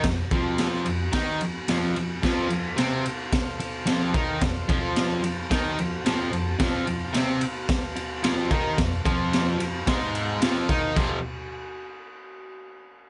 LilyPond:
<<
  \new Staff \with { instrumentName = "Transistor combo organ" } { \time 4/4 \key f \mixolydian \tempo 4 = 110 << { r1 | r1 | r4. f''8 a''8 f''8 g''8 a''8 | r1 |
r1 | r1 | } \\ { r1 | <a' c'' f''>1~ | <a' c'' f''>1 | <c'' f'' a''>1~ |
<c'' f'' a''>1 | <a' c'' f''>8 r2. r8 | } >> }
  \new Staff \with { instrumentName = "Overdriven electric guitar" } { \clef bass \time 4/4 \key f \mixolydian f,8 <f, f>4 f,8 <ees ees'>8 f,8 <f, f>8 f,8 | <f, f>8 f,8 <c c'>8 r4. <f, f>8 <ees ees'>8 | f,8 <f, f>4 f,8 <ees ees'>8 f,8 <f, f>8 f,8 | <f, f>8 f,8 <c c'>8 r4. <f, f>8 <ees ees'>8 |
f,8 <f, f>4 f,8 <aes, aes>4 <f, f>8 <ees ees'>8 | <f, c f>8 r2. r8 | }
  \new DrumStaff \with { instrumentName = "Drums" } \drummode { \time 4/4 <bd cymr sn>8 <bd cymr>8 <cymr sn>8 cymr8 <bd cymr sn>8 cymr8 <cymr sn>8 cymr8 | <cymc bd sn>8 cymr8 <cymr sn>8 cymr8 <bd cymr sn>8 cymr8 <cymr sn>8 <bd cymr>8 | <bd cymr sn>8 <bd cymr>8 <cymr sn>8 cymr8 <bd cymr sn>8 cymr8 <cymr sn>8 cymr8 | <bd cymr sn>8 cymr8 <cymr sn>8 cymr8 <bd cymr sn>8 cymr8 <cymr sn>8 <bd cymr>8 |
<bd cymr sn>8 <bd cymr>8 <cymr sn>8 cymr8 <bd cymr sn>8 cymr8 <cymr sn>8 <bd cymr>8 | <cymc bd>4 r4 r4 r4 | }
>>